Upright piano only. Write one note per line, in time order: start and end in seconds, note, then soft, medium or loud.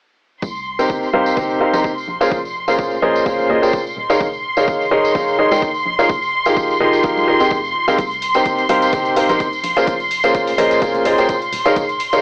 0.79 1.05 C3 medium
0.79 1.05 D#4 medium
0.79 1.05 G4 medium
0.79 1.05 A#4 medium
0.79 1.05 C5 medium
0.79 1.05 G5 medium
1.13 1.34 C3 medium
1.13 1.34 D#4 medium
1.13 1.34 G4 medium
1.13 1.34 A#4 medium
1.13 1.34 C5 medium
1.13 1.34 F5 medium
1.37 1.58 C3 medium
1.37 1.58 D#4 medium
1.37 1.58 G4 medium
1.37 1.58 A#4 medium
1.37 1.58 C5 medium
1.37 1.58 G5 medium
1.60 1.72 C3 medium
1.60 1.72 D#4 medium
1.60 1.72 G4 medium
1.60 1.71 A#4 medium
1.60 1.72 C5 medium
1.60 1.72 F5 medium
1.73 1.89 C3 medium
1.73 1.89 D#4 medium
1.73 1.89 G4 medium
1.73 1.89 A#4 medium
1.73 1.89 C5 medium
1.73 1.89 A#5 medium
2.21 2.36 A#2 medium
2.21 2.36 C#4 medium
2.21 2.36 G#4 medium
2.21 2.36 A#4 medium
2.21 2.36 C5 medium
2.21 2.36 F5 loud
2.68 2.94 A#2 medium
2.68 2.94 C#4 medium
2.68 2.94 G#4 medium
2.68 2.94 A#4 medium
2.68 2.94 C5 medium
2.68 2.94 F5 medium
3.02 3.23 A#2 medium
3.02 3.23 C#4 medium
3.02 3.23 G#4 medium
3.02 3.23 A#4 medium
3.02 3.23 C5 medium
3.02 3.23 D#5 loud
3.26 3.47 A#2 medium
3.26 3.47 C#4 medium
3.26 3.47 G#4 medium
3.26 3.47 A#4 medium
3.26 3.47 C5 medium
3.26 3.47 F5 medium
3.50 3.61 A#2 medium
3.50 3.61 C#4 medium
3.50 3.61 G#4 medium
3.50 3.61 A#4 medium
3.50 3.61 C5 medium
3.50 3.61 D#5 medium
3.62 3.78 A#2 medium
3.62 3.78 C#4 medium
3.62 3.78 G#4 medium
3.62 3.78 A#4 medium
3.62 3.78 C5 medium
3.62 3.78 G5 medium
4.10 4.25 D#3 medium
4.10 4.25 D#4 medium
4.10 4.25 G#4 medium
4.10 4.25 A#4 medium
4.10 4.25 C#5 medium
4.10 4.25 F5 loud
4.57 4.83 D#3 medium
4.57 4.83 D#4 medium
4.57 4.83 G#4 medium
4.57 4.83 A#4 medium
4.57 4.83 C#5 medium
4.57 4.83 F5 medium
4.91 5.12 D#3 medium
4.91 5.12 D#4 medium
4.91 5.12 G#4 medium
4.91 5.12 A#4 medium
4.91 5.12 C#5 medium
4.91 5.12 D#5 medium
5.15 5.36 D#3 medium
5.15 5.36 G#4 medium
5.15 5.36 A#4 medium
5.15 5.36 C#5 medium
5.15 5.36 F5 medium
5.39 5.50 D#3 medium
5.39 5.50 D#4 medium
5.39 5.50 G#4 medium
5.39 5.50 A#4 medium
5.39 5.50 C#5 medium
5.39 5.50 D#5 medium
5.52 5.67 D#3 medium
5.52 5.67 D#4 medium
5.52 5.67 G#4 medium
5.52 5.67 A#4 medium
5.52 5.67 C#5 medium
5.52 5.67 G5 medium
5.99 6.08 F3 loud
5.99 6.08 D#4 medium
5.99 6.08 G#4 medium
5.99 6.08 A#4 medium
5.99 6.08 C#5 medium
5.99 6.08 F5 loud
6.46 6.72 F3 medium
6.46 6.72 D#4 medium
6.46 6.72 G4 medium
6.46 6.72 G#4 medium
6.46 6.72 A#4 medium
6.46 6.72 F5 medium
6.80 7.01 F3 medium
6.80 7.01 D#4 medium
6.80 7.01 G4 medium
6.80 7.01 G#4 medium
6.80 7.01 A#4 medium
6.80 7.01 D#5 loud
7.04 7.25 F3 medium
7.04 7.25 D#4 medium
7.04 7.25 G4 medium
7.04 7.25 G#4 medium
7.04 7.25 A#4 medium
7.04 7.25 F5 medium
7.28 7.39 F3 medium
7.28 7.38 D#4 medium
7.28 7.39 G4 medium
7.28 7.39 G#4 medium
7.28 7.39 A#4 medium
7.28 7.39 D#5 medium
7.40 7.56 F3 medium
7.40 7.56 D#4 medium
7.40 7.56 G4 medium
7.40 7.56 G#4 medium
7.40 7.56 A#4 medium
7.40 7.56 G5 medium
7.88 7.97 C3 medium
7.88 7.97 D#4 medium
7.88 7.97 G4 medium
7.88 7.97 G#4 medium
7.88 7.97 A#4 medium
7.88 7.97 F5 loud
8.35 8.61 C3 medium
8.35 8.61 D#4 medium
8.35 8.61 G4 medium
8.35 8.61 A#4 medium
8.35 8.61 C5 medium
8.35 8.61 G5 medium
8.69 8.90 C3 medium
8.69 8.90 D#4 medium
8.69 8.90 G4 medium
8.69 8.90 A#4 medium
8.69 8.90 C5 medium
8.69 8.90 F5 medium
8.93 9.14 C3 medium
8.93 9.14 G4 medium
8.93 9.14 A#4 medium
8.93 9.14 C5 medium
9.17 9.28 C3 medium
9.17 9.27 D#4 medium
9.17 9.27 G4 medium
9.17 9.27 A#4 medium
9.17 9.27 C5 medium
9.17 9.27 F5 medium
9.29 9.45 C3 medium
9.29 9.45 D#4 medium
9.29 9.45 G4 medium
9.29 9.45 A#4 medium
9.29 9.45 C5 medium
9.29 9.45 A#5 medium
9.77 9.92 A#2 medium
9.77 9.92 C#4 medium
9.77 9.92 G#4 medium
9.77 9.92 A#4 medium
9.77 9.92 C5 medium
9.77 9.92 F5 loud
10.24 10.50 A#2 medium
10.24 10.50 C#4 medium
10.24 10.50 G#4 medium
10.24 10.50 A#4 medium
10.24 10.50 C5 medium
10.24 10.50 F5 medium
10.58 10.79 A#2 medium
10.58 10.79 C#4 medium
10.58 10.79 G#4 medium
10.58 10.79 A#4 medium
10.58 10.79 C5 medium
10.58 10.79 D#5 loud
10.82 11.03 A#2 medium
10.82 11.03 C#4 medium
10.82 11.03 G#4 medium
10.82 11.03 A#4 medium
10.82 11.03 C5 medium
10.82 11.03 F5 medium
11.05 11.16 A#2 medium
11.05 11.16 C#4 medium
11.05 11.16 G#4 medium
11.05 11.16 A#4 medium
11.05 11.16 C5 medium
11.05 11.16 D#5 medium
11.18 11.34 A#2 medium
11.18 11.34 C#4 medium
11.18 11.34 G#4 medium
11.18 11.34 A#4 medium
11.18 11.34 C5 medium
11.18 11.34 G5 medium
11.66 11.81 D#3 medium
11.66 11.81 D#4 medium
11.66 11.81 G#4 medium
11.66 11.81 A#4 medium
11.66 11.81 C#5 medium
11.66 11.81 F5 loud
12.13 12.22 D#3 medium
12.13 12.22 D#4 medium
12.13 12.22 G#4 medium
12.13 12.22 A#4 medium
12.13 12.22 C#5 medium
12.13 12.22 F5 medium